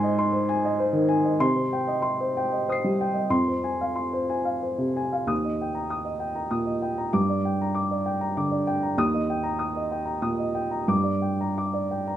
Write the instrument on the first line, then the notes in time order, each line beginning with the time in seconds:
upright piano
Already playing: G#2 C5 G#5 C6
0.03 D#5
0.19 C6
0.33 C5
0.49 G#5
0.65 D#5
0.80 C5
0.93 D#3
1.09 G#5
1.25 D#5
1.40 C3 C6
1.56 C5
1.73 G5
1.87 D#5
2.02 C6
2.20 C5
2.37 G5
2.53 D#5
2.68 C5 D#6
2.72 C7
2.84 G3
3.01 G5
3.14 D#5
3.30 F2 C6
3.48 C5
3.64 G#5
3.81 F5
3.96 C6
4.13 C5
4.30 G#5
4.45 F5
4.63 C5
4.78 C3
4.97 G#5
5.13 F5
5.27 D#2 D#6
5.45 D#5
5.62 G5
5.75 A#5
5.90 D#6
6.05 D#5
6.20 G5
6.35 A#5
6.51 A#2 D#6
6.66 D#5
6.82 G5
6.98 A#5
7.13 G2 D6
7.29 D5
7.45 G5
7.61 A#5
7.75 D6
7.91 D5
8.06 G5
8.21 A#5
8.37 D3 D6
8.51 D5
8.67 G5
8.83 A#5
8.98 D#2 D#6
9.14 D#5
9.30 G5
9.43 A#5
9.59 D#6
9.76 D#5
9.92 G5
10.05 A#5
10.22 A#2 D#6
10.39 D#5
10.55 G5
10.71 A#5
10.88 G2 D6
11.04 D5
11.22 G5
11.41 A#5
11.58 D6
11.74 D5
11.91 G5
12.07 A#5